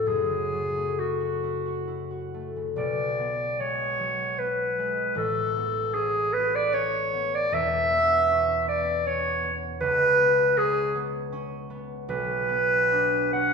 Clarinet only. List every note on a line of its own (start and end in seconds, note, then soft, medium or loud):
0.08 1.00 G#4 medium
0.99 2.33 F#4 medium
2.77 3.61 D5 medium
3.60 4.40 C#5 medium
4.39 5.17 B4 medium
5.17 5.95 A4 medium
5.94 6.35 G#4 medium
6.33 6.57 B4 loud
6.55 6.75 D5 loud
6.74 7.36 C#5 loud
7.35 7.55 D5 loud
7.54 8.68 E5 loud
8.68 9.08 D5 medium
9.07 9.55 C#5 loud
9.81 10.59 B4 loud
10.57 10.95 G#4 loud
12.09 13.29 B4 loud
13.33 13.54 F#5 loud